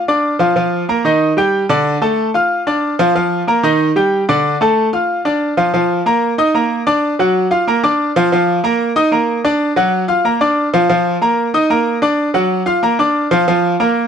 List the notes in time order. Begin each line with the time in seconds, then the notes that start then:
0.08 D4 D5 D6
0.39 F3 F4 F5
0.56 F3 F4 F5
0.89 A#3 A#4 A#5
1.05 D#3 D#4 D#5
1.37 G3 G4 G5
1.69 D3 D4 D5
2.02 A3 A4 A5
2.34 F4 F5 F6
2.67 D4 D5 D6
2.99 F3 F4 F5
3.15 F3 F4 F5
3.48 A#3 A#4 A#5
3.63 D#3 D#4 D#5
3.96 G3 G4 G5
4.29 D3 D4 D5
4.61 A3 A4 A5
4.93 F4 F5 F6
5.25 D4 D5 D6
5.57 F3 F4 F5
5.74 F3 F4 F5
6.06 A#3 A#4 A#5
6.38 D#4 D#5 D#6
6.54 A#3 A#4 A#5
6.87 D4 D5 D6
7.19 F#3 F#4 F#5
7.51 F4 F5 F6
7.67 A#3 A#4 A#5
7.83 D4 D5 D6
8.16 F3 F4 F5
8.32 F3 F4 F5
8.64 A#3 A#4 A#5
8.96 D#4 D#5 D#6
9.12 A#3 A#4 A#5
9.45 D4 D5 D6
9.76 F#3 F#4 F#5
10.08 F4 F5 F6
10.25 A#3 A#4 A#5
10.41 D4 D5 D6
10.74 F3 F4 F5
10.89 F3 F4 F5
11.21 A#3 A#4 A#5
11.54 D#4 D#5 D#6
11.70 A#3 A#4 A#5
12.02 D4 D5 D6
12.34 F#3 F#4 F#5
12.66 F4 F5 F6
12.83 A#3 A#4 A#5
12.99 D4 D5 D6
13.31 F3 F4 F5
13.48 F3 F4 F5
13.80 A#3 A#4 A#5